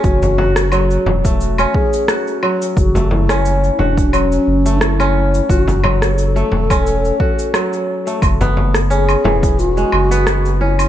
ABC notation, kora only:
X:1
M:4/4
L:1/16
Q:"Swing 16ths" 1/4=88
K:F#m
V:1 name="Kora"
C2 F z F, z2 A,2 C3 F z F, z | z A,2 C3 F z F, z2 A,2 C3 | F z F, z2 A,2 C3 F z F, z2 A, | z B,3 C z E, z2 G,2 B,3 C z |]